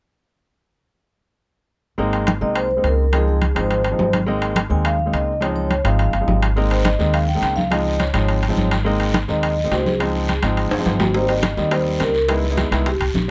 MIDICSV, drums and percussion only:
0, 0, Header, 1, 2, 480
1, 0, Start_track
1, 0, Key_signature, -4, "major"
1, 0, Tempo, 286123
1, 3333, Time_signature, 4, 2, 24, 8
1, 22319, End_track
2, 0, Start_track
2, 0, Title_t, "Drums"
2, 3341, Note_on_c, 9, 63, 30
2, 3509, Note_off_c, 9, 63, 0
2, 3573, Note_on_c, 9, 65, 59
2, 3589, Note_on_c, 9, 63, 27
2, 3740, Note_off_c, 9, 65, 0
2, 3757, Note_off_c, 9, 63, 0
2, 3806, Note_on_c, 9, 65, 78
2, 3823, Note_on_c, 9, 63, 81
2, 3974, Note_off_c, 9, 65, 0
2, 3991, Note_off_c, 9, 63, 0
2, 4063, Note_on_c, 9, 63, 28
2, 4231, Note_off_c, 9, 63, 0
2, 4286, Note_on_c, 9, 65, 80
2, 4305, Note_on_c, 9, 63, 29
2, 4454, Note_off_c, 9, 65, 0
2, 4472, Note_off_c, 9, 63, 0
2, 4545, Note_on_c, 9, 63, 29
2, 4713, Note_off_c, 9, 63, 0
2, 4762, Note_on_c, 9, 65, 54
2, 4780, Note_on_c, 9, 63, 30
2, 4930, Note_off_c, 9, 65, 0
2, 4948, Note_off_c, 9, 63, 0
2, 5247, Note_on_c, 9, 65, 75
2, 5257, Note_on_c, 9, 63, 29
2, 5415, Note_off_c, 9, 65, 0
2, 5425, Note_off_c, 9, 63, 0
2, 5499, Note_on_c, 9, 63, 28
2, 5667, Note_off_c, 9, 63, 0
2, 5730, Note_on_c, 9, 65, 60
2, 5736, Note_on_c, 9, 63, 51
2, 5897, Note_off_c, 9, 65, 0
2, 5903, Note_off_c, 9, 63, 0
2, 5974, Note_on_c, 9, 65, 80
2, 5983, Note_on_c, 9, 63, 27
2, 6142, Note_off_c, 9, 65, 0
2, 6151, Note_off_c, 9, 63, 0
2, 6216, Note_on_c, 9, 65, 55
2, 6224, Note_on_c, 9, 63, 28
2, 6384, Note_off_c, 9, 65, 0
2, 6391, Note_off_c, 9, 63, 0
2, 6450, Note_on_c, 9, 65, 60
2, 6460, Note_on_c, 9, 63, 29
2, 6617, Note_off_c, 9, 65, 0
2, 6628, Note_off_c, 9, 63, 0
2, 6695, Note_on_c, 9, 66, 57
2, 6704, Note_on_c, 9, 63, 70
2, 6863, Note_off_c, 9, 66, 0
2, 6871, Note_off_c, 9, 63, 0
2, 6934, Note_on_c, 9, 65, 76
2, 6941, Note_on_c, 9, 63, 63
2, 7102, Note_off_c, 9, 65, 0
2, 7108, Note_off_c, 9, 63, 0
2, 7180, Note_on_c, 9, 63, 31
2, 7348, Note_off_c, 9, 63, 0
2, 7412, Note_on_c, 9, 65, 62
2, 7416, Note_on_c, 9, 63, 29
2, 7579, Note_off_c, 9, 65, 0
2, 7583, Note_off_c, 9, 63, 0
2, 7648, Note_on_c, 9, 63, 78
2, 7655, Note_on_c, 9, 65, 88
2, 7816, Note_off_c, 9, 63, 0
2, 7823, Note_off_c, 9, 65, 0
2, 7888, Note_on_c, 9, 63, 27
2, 8056, Note_off_c, 9, 63, 0
2, 8130, Note_on_c, 9, 63, 28
2, 8133, Note_on_c, 9, 65, 79
2, 8298, Note_off_c, 9, 63, 0
2, 8301, Note_off_c, 9, 65, 0
2, 8373, Note_on_c, 9, 63, 30
2, 8541, Note_off_c, 9, 63, 0
2, 8615, Note_on_c, 9, 65, 59
2, 8619, Note_on_c, 9, 63, 31
2, 8782, Note_off_c, 9, 65, 0
2, 8787, Note_off_c, 9, 63, 0
2, 9091, Note_on_c, 9, 63, 31
2, 9095, Note_on_c, 9, 65, 68
2, 9259, Note_off_c, 9, 63, 0
2, 9263, Note_off_c, 9, 65, 0
2, 9331, Note_on_c, 9, 63, 28
2, 9499, Note_off_c, 9, 63, 0
2, 9571, Note_on_c, 9, 63, 51
2, 9572, Note_on_c, 9, 65, 60
2, 9739, Note_off_c, 9, 63, 0
2, 9740, Note_off_c, 9, 65, 0
2, 9810, Note_on_c, 9, 65, 75
2, 9814, Note_on_c, 9, 63, 27
2, 9978, Note_off_c, 9, 65, 0
2, 9982, Note_off_c, 9, 63, 0
2, 10051, Note_on_c, 9, 65, 56
2, 10054, Note_on_c, 9, 63, 27
2, 10219, Note_off_c, 9, 65, 0
2, 10222, Note_off_c, 9, 63, 0
2, 10288, Note_on_c, 9, 65, 59
2, 10295, Note_on_c, 9, 63, 29
2, 10455, Note_off_c, 9, 65, 0
2, 10462, Note_off_c, 9, 63, 0
2, 10532, Note_on_c, 9, 63, 71
2, 10532, Note_on_c, 9, 66, 53
2, 10700, Note_off_c, 9, 63, 0
2, 10700, Note_off_c, 9, 66, 0
2, 10778, Note_on_c, 9, 65, 77
2, 10946, Note_off_c, 9, 65, 0
2, 11018, Note_on_c, 9, 74, 59
2, 11022, Note_on_c, 9, 63, 31
2, 11186, Note_off_c, 9, 74, 0
2, 11190, Note_off_c, 9, 63, 0
2, 11258, Note_on_c, 9, 65, 63
2, 11261, Note_on_c, 9, 63, 30
2, 11425, Note_off_c, 9, 65, 0
2, 11428, Note_off_c, 9, 63, 0
2, 11488, Note_on_c, 9, 65, 78
2, 11495, Note_on_c, 9, 63, 76
2, 11499, Note_on_c, 9, 73, 64
2, 11655, Note_off_c, 9, 65, 0
2, 11663, Note_off_c, 9, 63, 0
2, 11667, Note_off_c, 9, 73, 0
2, 11739, Note_on_c, 9, 63, 29
2, 11739, Note_on_c, 9, 73, 61
2, 11906, Note_off_c, 9, 63, 0
2, 11907, Note_off_c, 9, 73, 0
2, 11973, Note_on_c, 9, 65, 73
2, 11981, Note_on_c, 9, 74, 60
2, 11983, Note_on_c, 9, 63, 30
2, 12141, Note_off_c, 9, 65, 0
2, 12149, Note_off_c, 9, 74, 0
2, 12151, Note_off_c, 9, 63, 0
2, 12221, Note_on_c, 9, 63, 29
2, 12388, Note_off_c, 9, 63, 0
2, 12457, Note_on_c, 9, 65, 60
2, 12465, Note_on_c, 9, 73, 61
2, 12469, Note_on_c, 9, 63, 30
2, 12625, Note_off_c, 9, 65, 0
2, 12633, Note_off_c, 9, 73, 0
2, 12637, Note_off_c, 9, 63, 0
2, 12702, Note_on_c, 9, 73, 60
2, 12708, Note_on_c, 9, 63, 61
2, 12870, Note_off_c, 9, 73, 0
2, 12876, Note_off_c, 9, 63, 0
2, 12941, Note_on_c, 9, 63, 32
2, 12944, Note_on_c, 9, 65, 76
2, 12946, Note_on_c, 9, 74, 57
2, 13109, Note_off_c, 9, 63, 0
2, 13111, Note_off_c, 9, 65, 0
2, 13113, Note_off_c, 9, 74, 0
2, 13181, Note_on_c, 9, 63, 27
2, 13349, Note_off_c, 9, 63, 0
2, 13416, Note_on_c, 9, 65, 64
2, 13423, Note_on_c, 9, 73, 67
2, 13424, Note_on_c, 9, 63, 49
2, 13584, Note_off_c, 9, 65, 0
2, 13591, Note_off_c, 9, 63, 0
2, 13591, Note_off_c, 9, 73, 0
2, 13652, Note_on_c, 9, 65, 77
2, 13665, Note_on_c, 9, 63, 30
2, 13665, Note_on_c, 9, 73, 59
2, 13820, Note_off_c, 9, 65, 0
2, 13832, Note_off_c, 9, 73, 0
2, 13833, Note_off_c, 9, 63, 0
2, 13898, Note_on_c, 9, 65, 58
2, 13904, Note_on_c, 9, 74, 58
2, 13909, Note_on_c, 9, 63, 27
2, 14065, Note_off_c, 9, 65, 0
2, 14071, Note_off_c, 9, 74, 0
2, 14077, Note_off_c, 9, 63, 0
2, 14138, Note_on_c, 9, 65, 56
2, 14147, Note_on_c, 9, 63, 30
2, 14306, Note_off_c, 9, 65, 0
2, 14314, Note_off_c, 9, 63, 0
2, 14384, Note_on_c, 9, 63, 76
2, 14386, Note_on_c, 9, 73, 62
2, 14551, Note_off_c, 9, 63, 0
2, 14554, Note_off_c, 9, 73, 0
2, 14618, Note_on_c, 9, 65, 81
2, 14624, Note_on_c, 9, 73, 64
2, 14786, Note_off_c, 9, 65, 0
2, 14792, Note_off_c, 9, 73, 0
2, 14866, Note_on_c, 9, 63, 32
2, 14870, Note_on_c, 9, 74, 61
2, 15034, Note_off_c, 9, 63, 0
2, 15038, Note_off_c, 9, 74, 0
2, 15096, Note_on_c, 9, 65, 60
2, 15103, Note_on_c, 9, 63, 29
2, 15264, Note_off_c, 9, 65, 0
2, 15271, Note_off_c, 9, 63, 0
2, 15337, Note_on_c, 9, 65, 84
2, 15339, Note_on_c, 9, 63, 80
2, 15344, Note_on_c, 9, 73, 64
2, 15505, Note_off_c, 9, 65, 0
2, 15507, Note_off_c, 9, 63, 0
2, 15511, Note_off_c, 9, 73, 0
2, 15579, Note_on_c, 9, 63, 29
2, 15584, Note_on_c, 9, 73, 60
2, 15747, Note_off_c, 9, 63, 0
2, 15752, Note_off_c, 9, 73, 0
2, 15817, Note_on_c, 9, 63, 31
2, 15820, Note_on_c, 9, 65, 79
2, 15822, Note_on_c, 9, 74, 61
2, 15985, Note_off_c, 9, 63, 0
2, 15988, Note_off_c, 9, 65, 0
2, 15989, Note_off_c, 9, 74, 0
2, 16062, Note_on_c, 9, 63, 29
2, 16230, Note_off_c, 9, 63, 0
2, 16300, Note_on_c, 9, 65, 60
2, 16300, Note_on_c, 9, 66, 57
2, 16301, Note_on_c, 9, 63, 29
2, 16303, Note_on_c, 9, 73, 66
2, 16467, Note_off_c, 9, 65, 0
2, 16467, Note_off_c, 9, 66, 0
2, 16469, Note_off_c, 9, 63, 0
2, 16471, Note_off_c, 9, 73, 0
2, 16545, Note_on_c, 9, 63, 60
2, 16547, Note_on_c, 9, 73, 64
2, 16713, Note_off_c, 9, 63, 0
2, 16715, Note_off_c, 9, 73, 0
2, 16781, Note_on_c, 9, 65, 77
2, 16786, Note_on_c, 9, 74, 59
2, 16791, Note_on_c, 9, 63, 30
2, 16949, Note_off_c, 9, 65, 0
2, 16954, Note_off_c, 9, 74, 0
2, 16959, Note_off_c, 9, 63, 0
2, 17029, Note_on_c, 9, 63, 29
2, 17197, Note_off_c, 9, 63, 0
2, 17260, Note_on_c, 9, 73, 63
2, 17261, Note_on_c, 9, 65, 63
2, 17271, Note_on_c, 9, 63, 49
2, 17428, Note_off_c, 9, 73, 0
2, 17429, Note_off_c, 9, 65, 0
2, 17439, Note_off_c, 9, 63, 0
2, 17489, Note_on_c, 9, 65, 83
2, 17500, Note_on_c, 9, 73, 54
2, 17511, Note_on_c, 9, 63, 29
2, 17657, Note_off_c, 9, 65, 0
2, 17668, Note_off_c, 9, 73, 0
2, 17679, Note_off_c, 9, 63, 0
2, 17736, Note_on_c, 9, 65, 59
2, 17739, Note_on_c, 9, 74, 61
2, 17744, Note_on_c, 9, 63, 29
2, 17903, Note_off_c, 9, 65, 0
2, 17907, Note_off_c, 9, 74, 0
2, 17912, Note_off_c, 9, 63, 0
2, 17972, Note_on_c, 9, 65, 78
2, 17984, Note_on_c, 9, 63, 29
2, 18140, Note_off_c, 9, 65, 0
2, 18152, Note_off_c, 9, 63, 0
2, 18217, Note_on_c, 9, 73, 61
2, 18218, Note_on_c, 9, 65, 68
2, 18221, Note_on_c, 9, 63, 72
2, 18385, Note_off_c, 9, 73, 0
2, 18386, Note_off_c, 9, 65, 0
2, 18389, Note_off_c, 9, 63, 0
2, 18449, Note_on_c, 9, 66, 72
2, 18457, Note_on_c, 9, 63, 61
2, 18461, Note_on_c, 9, 73, 63
2, 18617, Note_off_c, 9, 66, 0
2, 18624, Note_off_c, 9, 63, 0
2, 18629, Note_off_c, 9, 73, 0
2, 18692, Note_on_c, 9, 63, 32
2, 18696, Note_on_c, 9, 60, 66
2, 18702, Note_on_c, 9, 74, 64
2, 18860, Note_off_c, 9, 63, 0
2, 18864, Note_off_c, 9, 60, 0
2, 18869, Note_off_c, 9, 74, 0
2, 18935, Note_on_c, 9, 60, 29
2, 18935, Note_on_c, 9, 63, 27
2, 18936, Note_on_c, 9, 65, 60
2, 19102, Note_off_c, 9, 60, 0
2, 19102, Note_off_c, 9, 63, 0
2, 19104, Note_off_c, 9, 65, 0
2, 19170, Note_on_c, 9, 65, 80
2, 19173, Note_on_c, 9, 60, 51
2, 19174, Note_on_c, 9, 73, 63
2, 19176, Note_on_c, 9, 63, 82
2, 19338, Note_off_c, 9, 65, 0
2, 19340, Note_off_c, 9, 60, 0
2, 19341, Note_off_c, 9, 73, 0
2, 19344, Note_off_c, 9, 63, 0
2, 19416, Note_on_c, 9, 60, 32
2, 19419, Note_on_c, 9, 73, 56
2, 19420, Note_on_c, 9, 63, 28
2, 19583, Note_off_c, 9, 60, 0
2, 19587, Note_off_c, 9, 73, 0
2, 19588, Note_off_c, 9, 63, 0
2, 19650, Note_on_c, 9, 60, 62
2, 19650, Note_on_c, 9, 65, 79
2, 19660, Note_on_c, 9, 63, 30
2, 19661, Note_on_c, 9, 74, 62
2, 19818, Note_off_c, 9, 60, 0
2, 19818, Note_off_c, 9, 65, 0
2, 19828, Note_off_c, 9, 63, 0
2, 19829, Note_off_c, 9, 74, 0
2, 19904, Note_on_c, 9, 63, 30
2, 20071, Note_off_c, 9, 63, 0
2, 20131, Note_on_c, 9, 65, 60
2, 20135, Note_on_c, 9, 60, 29
2, 20135, Note_on_c, 9, 61, 67
2, 20140, Note_on_c, 9, 63, 32
2, 20142, Note_on_c, 9, 73, 67
2, 20299, Note_off_c, 9, 65, 0
2, 20303, Note_off_c, 9, 60, 0
2, 20303, Note_off_c, 9, 61, 0
2, 20308, Note_off_c, 9, 63, 0
2, 20310, Note_off_c, 9, 73, 0
2, 20370, Note_on_c, 9, 60, 28
2, 20379, Note_on_c, 9, 73, 65
2, 20538, Note_off_c, 9, 60, 0
2, 20547, Note_off_c, 9, 73, 0
2, 20610, Note_on_c, 9, 60, 66
2, 20614, Note_on_c, 9, 74, 56
2, 20617, Note_on_c, 9, 65, 73
2, 20621, Note_on_c, 9, 63, 33
2, 20778, Note_off_c, 9, 60, 0
2, 20782, Note_off_c, 9, 74, 0
2, 20785, Note_off_c, 9, 65, 0
2, 20788, Note_off_c, 9, 63, 0
2, 20851, Note_on_c, 9, 60, 29
2, 20861, Note_on_c, 9, 63, 28
2, 21019, Note_off_c, 9, 60, 0
2, 21029, Note_off_c, 9, 63, 0
2, 21094, Note_on_c, 9, 60, 54
2, 21097, Note_on_c, 9, 65, 61
2, 21097, Note_on_c, 9, 73, 66
2, 21102, Note_on_c, 9, 63, 52
2, 21262, Note_off_c, 9, 60, 0
2, 21265, Note_off_c, 9, 65, 0
2, 21265, Note_off_c, 9, 73, 0
2, 21270, Note_off_c, 9, 63, 0
2, 21339, Note_on_c, 9, 73, 59
2, 21340, Note_on_c, 9, 60, 31
2, 21341, Note_on_c, 9, 65, 80
2, 21344, Note_on_c, 9, 63, 31
2, 21507, Note_off_c, 9, 73, 0
2, 21508, Note_off_c, 9, 60, 0
2, 21509, Note_off_c, 9, 65, 0
2, 21512, Note_off_c, 9, 63, 0
2, 21577, Note_on_c, 9, 60, 61
2, 21577, Note_on_c, 9, 65, 58
2, 21578, Note_on_c, 9, 74, 57
2, 21581, Note_on_c, 9, 63, 30
2, 21745, Note_off_c, 9, 60, 0
2, 21745, Note_off_c, 9, 65, 0
2, 21746, Note_off_c, 9, 74, 0
2, 21749, Note_off_c, 9, 63, 0
2, 21819, Note_on_c, 9, 65, 64
2, 21825, Note_on_c, 9, 63, 30
2, 21986, Note_off_c, 9, 65, 0
2, 21993, Note_off_c, 9, 63, 0
2, 22059, Note_on_c, 9, 60, 29
2, 22059, Note_on_c, 9, 61, 71
2, 22060, Note_on_c, 9, 63, 74
2, 22060, Note_on_c, 9, 73, 68
2, 22226, Note_off_c, 9, 60, 0
2, 22226, Note_off_c, 9, 61, 0
2, 22228, Note_off_c, 9, 63, 0
2, 22228, Note_off_c, 9, 73, 0
2, 22319, End_track
0, 0, End_of_file